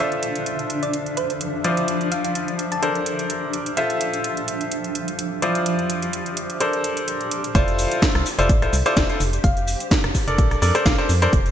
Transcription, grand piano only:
0.00 1.62 F4 medium
0.00 1.62 A4 medium
0.00 1.62 C5 medium
0.00 1.62 E5 medium
1.64 2.80 F3 medium
1.64 2.80 E4 medium
1.64 2.80 F4 medium
1.64 2.80 C5 medium
1.64 2.80 D5 medium
2.83 3.74 D4 medium
2.83 3.74 A4 medium
2.83 3.74 A#4 medium
2.83 3.74 C5 medium
3.77 5.40 F4 medium
3.77 5.40 A4 medium
3.77 5.40 C5 medium
3.77 5.40 E5 medium
5.42 6.58 F3 medium
5.42 6.58 E4 medium
5.42 6.58 F4 medium
5.42 6.58 C5 medium
5.42 6.58 D5 medium
6.60 7.52 D4 medium
6.60 7.52 A4 medium
6.60 7.52 A#4 medium
6.60 7.52 C5 medium
7.55 8.26 E4 loud
7.55 8.26 F4 loud
7.55 8.26 A4 medium
7.55 8.26 C5 loud
8.39 8.49 E4 medium
8.39 8.49 F4 medium
8.39 8.49 A4 medium
8.39 8.49 C5 loud
8.62 8.73 E4 medium
8.62 8.73 F4 medium
8.62 8.73 A4 medium
8.62 8.73 C5 medium
8.86 9.06 E4 medium
8.86 9.06 F4 medium
8.86 9.06 A4 medium
8.86 9.06 C5 loud
9.09 9.19 E4 medium
9.09 9.19 F4 medium
9.09 9.19 A4 medium
9.09 9.19 C5 medium
10.28 10.59 D4 medium
10.28 10.59 A4 medium
10.28 10.59 A#4 medium
10.28 10.59 D5 medium
10.62 10.72 D4 medium
10.62 10.72 A4 medium
10.62 10.72 A#4 medium
10.62 10.72 D5 medium
10.75 10.84 D4 medium
10.75 10.84 A4 medium
10.75 10.84 A#4 medium
10.75 10.84 C5 loud
10.86 10.95 D4 medium
10.86 10.95 A4 medium
10.86 10.95 A#4 medium
10.86 10.95 F5 medium
10.98 11.09 D4 medium
10.98 11.09 A4 medium
10.98 11.09 A#4 medium
10.98 11.09 C5 loud
11.22 11.32 D4 loud
11.22 11.32 A4 medium
11.22 11.32 A#4 medium
11.22 11.32 C5 loud

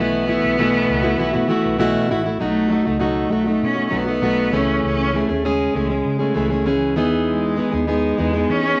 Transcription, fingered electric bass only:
0.00 0.35 B1 loud
0.44 0.81 B1 medium
0.89 1.14 C#2 medium
1.20 1.32 B1 medium
1.35 1.47 B2 medium
1.65 1.77 B1 medium
1.81 1.93 B1 medium
2.11 2.36 A1 medium
2.41 2.78 B1 medium
2.87 3.24 C#2 medium
3.32 3.57 B1 medium
3.63 3.87 B2 medium
3.92 4.17 B1 medium
4.23 4.48 B1 medium
4.53 4.78 C#2 medium
4.83 5.21 C#2 medium
5.30 5.67 D#2 medium
5.75 6.00 C#2 medium
6.05 6.30 C#3 medium
6.36 6.97 C#2 medium
6.97 7.59 E2 medium
7.73 8.10 D#2 medium
8.19 8.44 E2 medium
8.49 8.74 E3 medium

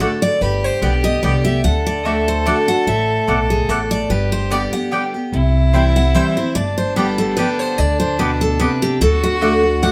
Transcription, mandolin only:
0.01 0.10 F#4 medium
0.01 0.10 D5 medium
0.01 0.11 F#5 medium
0.82 0.92 B3 medium
0.82 0.92 G4 medium
0.82 0.92 D5 medium
0.82 0.92 G5 loud
1.23 1.33 B3 medium
1.23 1.33 G4 medium
1.23 1.33 D5 loud
1.23 1.33 G5 loud
2.05 2.15 A3 medium
2.05 2.15 F#4 loud
2.05 2.15 D5 medium
2.05 2.15 F#5 loud
2.46 2.56 A3 loud
2.46 2.56 F#4 medium
2.46 2.56 D5 medium
2.46 2.56 F#5 loud
3.27 3.38 A3 medium
3.27 3.38 F#4 medium
3.27 3.38 D5 medium
3.27 3.38 F#5 loud
3.69 3.79 A3 medium
3.69 3.79 F#4 medium
3.69 3.79 D5 loud
3.69 3.79 F#5 loud
4.50 4.61 B3 medium
4.50 4.61 G4 medium
4.50 4.61 D5 medium
4.50 4.61 G5 loud
4.91 5.01 B3 medium
4.91 5.02 G4 medium
4.91 5.02 D5 medium
4.91 5.02 G5 loud
5.73 5.83 C4 medium
5.73 5.84 E4 medium
5.73 5.84 C5 loud
5.73 5.84 G5 loud
6.15 6.24 C4 medium
6.15 6.25 E4 medium
6.15 6.25 C5 loud
6.15 6.25 G5 loud
6.96 7.06 B3 medium
6.96 7.06 G4 medium
6.96 7.07 D5 loud
6.96 7.07 G5 loud
7.37 7.47 B3 loud
7.37 7.47 G4 medium
7.37 7.47 D5 loud
7.37 7.48 G5 loud
8.19 8.29 B3 medium
8.19 8.29 G4 loud
8.19 8.29 D5 loud
8.19 8.29 G5 loud
8.60 8.70 B3 medium
8.60 8.70 G4 medium
8.60 8.70 D5 medium
8.60 8.70 G5 loud
9.41 9.51 A3 medium
9.41 9.52 F#4 medium
9.41 9.52 D5 loud
9.41 9.52 F#5 loud
9.82 9.92 A3 medium
9.82 9.92 F#4 loud
9.82 9.92 D5 medium
9.82 9.92 F#5 loud

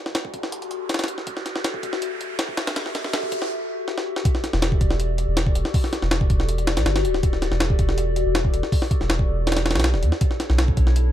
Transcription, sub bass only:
0.06 0.32 E1 loud
0.34 0.79 E1 medium
1.55 1.81 E1 loud
1.83 2.28 E1 loud
2.30 2.56 E1 loud
2.58 2.66 E1 medium
3.04 3.30 E1 loud
3.32 3.51 E1 loud
4.53 4.80 E1 loud
4.81 5.26 E1 loud
5.28 5.54 E1 loud
5.55 5.64 E1 medium
6.02 6.29 E1 loud
6.30 6.78 E1 medium
6.77 6.85 B1 medium
6.86 7.06 G1 loud
7.04 7.50 D1 medium
7.51 7.77 E1 loud
7.79 8.24 E1 loud
8.26 8.52 E1 loud
8.54 8.62 E1 medium
9.00 9.27 E1 loud
9.28 9.76 E1 loud
9.75 9.95 B1 medium
9.94 10.04 D1 loud
10.03 10.11 E2 loud
10.49 10.76 B1 loud
10.77 11.12 B1 loud

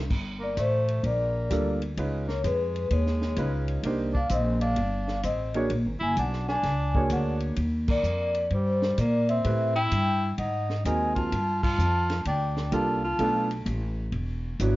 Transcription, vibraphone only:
0.43 0.57 D5 medium
0.60 1.01 C5 medium
1.06 1.78 D5 medium
2.29 2.43 C#5 medium
2.46 2.88 B4 medium
2.93 3.65 C#5 medium
4.16 4.31 F5 medium
4.33 4.62 D#5 medium
4.61 5.20 F5 medium
5.25 5.54 D#5 medium
6.03 6.17 G#5 loud
6.19 6.48 F#5 medium
6.49 7.07 G#5 loud
7.12 7.30 F#5 medium
7.91 8.48 D5 medium
8.53 8.95 C5 medium
8.99 9.28 D5 medium
9.29 9.72 E5 medium
9.76 10.34 G5 loud
10.38 10.82 F#5 medium
10.86 11.16 G#5 loud
11.18 11.61 A5 medium
11.66 12.23 A5 medium
12.27 12.70 G5 medium
12.74 13.03 A5 medium
13.06 13.48 A5 medium

